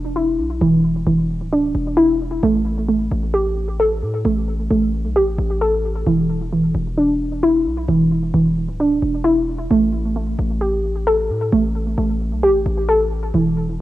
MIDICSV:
0, 0, Header, 1, 3, 480
1, 0, Start_track
1, 0, Tempo, 454545
1, 647, Time_signature, 4, 2, 24, 8
1, 14584, End_track
2, 0, Start_track
2, 0, Title_t, "Synth pluck"
2, 0, Program_c, 0, 84
2, 0, Note_on_c, 0, 52, 69
2, 0, Note_on_c, 0, 62, 75
2, 167, Note_on_c, 0, 64, 93
2, 636, Note_off_c, 0, 52, 0
2, 649, Note_on_c, 0, 52, 90
2, 1114, Note_off_c, 0, 52, 0
2, 1127, Note_on_c, 0, 52, 77
2, 1600, Note_off_c, 0, 62, 0
2, 1612, Note_on_c, 0, 62, 72
2, 2067, Note_off_c, 0, 64, 0
2, 2080, Note_on_c, 0, 64, 104
2, 2563, Note_off_c, 0, 64, 0
2, 2567, Note_off_c, 0, 52, 0
2, 2570, Note_off_c, 0, 62, 0
2, 2570, Note_on_c, 0, 57, 94
2, 3034, Note_off_c, 0, 57, 0
2, 3047, Note_on_c, 0, 57, 76
2, 3523, Note_on_c, 0, 67, 77
2, 4008, Note_on_c, 0, 69, 97
2, 4476, Note_off_c, 0, 57, 0
2, 4489, Note_on_c, 0, 57, 85
2, 4954, Note_off_c, 0, 57, 0
2, 4967, Note_on_c, 0, 57, 81
2, 5436, Note_off_c, 0, 67, 0
2, 5448, Note_on_c, 0, 67, 80
2, 5915, Note_off_c, 0, 69, 0
2, 5928, Note_on_c, 0, 69, 105
2, 6407, Note_off_c, 0, 57, 0
2, 6407, Note_off_c, 0, 69, 0
2, 6408, Note_off_c, 0, 67, 0
2, 6409, Note_on_c, 0, 52, 89
2, 6880, Note_off_c, 0, 52, 0
2, 6893, Note_on_c, 0, 52, 70
2, 7366, Note_on_c, 0, 62, 75
2, 7847, Note_on_c, 0, 64, 97
2, 8316, Note_off_c, 0, 52, 0
2, 8329, Note_on_c, 0, 52, 92
2, 8795, Note_off_c, 0, 52, 0
2, 8808, Note_on_c, 0, 52, 78
2, 9281, Note_off_c, 0, 62, 0
2, 9293, Note_on_c, 0, 62, 73
2, 9747, Note_off_c, 0, 64, 0
2, 9760, Note_on_c, 0, 64, 103
2, 10243, Note_off_c, 0, 64, 0
2, 10248, Note_off_c, 0, 52, 0
2, 10250, Note_off_c, 0, 62, 0
2, 10252, Note_on_c, 0, 57, 93
2, 10717, Note_off_c, 0, 57, 0
2, 10729, Note_on_c, 0, 57, 79
2, 11206, Note_on_c, 0, 67, 78
2, 11690, Note_on_c, 0, 69, 101
2, 12158, Note_off_c, 0, 57, 0
2, 12171, Note_on_c, 0, 57, 84
2, 12635, Note_off_c, 0, 57, 0
2, 12648, Note_on_c, 0, 57, 80
2, 13116, Note_off_c, 0, 67, 0
2, 13129, Note_on_c, 0, 67, 84
2, 13596, Note_off_c, 0, 69, 0
2, 13609, Note_on_c, 0, 69, 106
2, 14087, Note_off_c, 0, 57, 0
2, 14088, Note_off_c, 0, 67, 0
2, 14088, Note_off_c, 0, 69, 0
2, 14090, Note_on_c, 0, 52, 87
2, 14562, Note_off_c, 0, 52, 0
2, 14584, End_track
3, 0, Start_track
3, 0, Title_t, "808-style bass"
3, 0, Program_c, 1, 38
3, 0, Note_on_c, 1, 28, 110
3, 406, Note_on_c, 1, 35, 104
3, 422, Note_off_c, 1, 28, 0
3, 635, Note_off_c, 1, 35, 0
3, 647, Note_on_c, 1, 28, 108
3, 1108, Note_off_c, 1, 28, 0
3, 1127, Note_on_c, 1, 28, 105
3, 1494, Note_on_c, 1, 26, 96
3, 1510, Note_off_c, 1, 28, 0
3, 1830, Note_off_c, 1, 26, 0
3, 1847, Note_on_c, 1, 28, 103
3, 2538, Note_off_c, 1, 28, 0
3, 2567, Note_on_c, 1, 33, 108
3, 3258, Note_off_c, 1, 33, 0
3, 3288, Note_on_c, 1, 33, 107
3, 4247, Note_on_c, 1, 45, 102
3, 4263, Note_off_c, 1, 33, 0
3, 4475, Note_off_c, 1, 45, 0
3, 4486, Note_on_c, 1, 33, 105
3, 4947, Note_off_c, 1, 33, 0
3, 4968, Note_on_c, 1, 33, 103
3, 5334, Note_on_c, 1, 35, 96
3, 5350, Note_off_c, 1, 33, 0
3, 5510, Note_on_c, 1, 33, 100
3, 5525, Note_off_c, 1, 35, 0
3, 5678, Note_off_c, 1, 33, 0
3, 5686, Note_on_c, 1, 33, 105
3, 6378, Note_off_c, 1, 33, 0
3, 6406, Note_on_c, 1, 28, 112
3, 7097, Note_off_c, 1, 28, 0
3, 7125, Note_on_c, 1, 28, 108
3, 8086, Note_on_c, 1, 35, 102
3, 8102, Note_off_c, 1, 28, 0
3, 8315, Note_off_c, 1, 35, 0
3, 8327, Note_on_c, 1, 28, 110
3, 8788, Note_off_c, 1, 28, 0
3, 8807, Note_on_c, 1, 28, 105
3, 9175, Note_on_c, 1, 26, 97
3, 9191, Note_off_c, 1, 28, 0
3, 9510, Note_off_c, 1, 26, 0
3, 9529, Note_on_c, 1, 28, 105
3, 10219, Note_off_c, 1, 28, 0
3, 10249, Note_on_c, 1, 33, 112
3, 10939, Note_off_c, 1, 33, 0
3, 10970, Note_on_c, 1, 33, 109
3, 11929, Note_on_c, 1, 45, 102
3, 11945, Note_off_c, 1, 33, 0
3, 12156, Note_off_c, 1, 45, 0
3, 12170, Note_on_c, 1, 33, 112
3, 12629, Note_off_c, 1, 33, 0
3, 12649, Note_on_c, 1, 33, 104
3, 13015, Note_on_c, 1, 35, 96
3, 13031, Note_off_c, 1, 33, 0
3, 13192, Note_on_c, 1, 33, 100
3, 13207, Note_off_c, 1, 35, 0
3, 13359, Note_off_c, 1, 33, 0
3, 13368, Note_on_c, 1, 33, 103
3, 14059, Note_off_c, 1, 33, 0
3, 14088, Note_on_c, 1, 28, 109
3, 14584, Note_off_c, 1, 28, 0
3, 14584, End_track
0, 0, End_of_file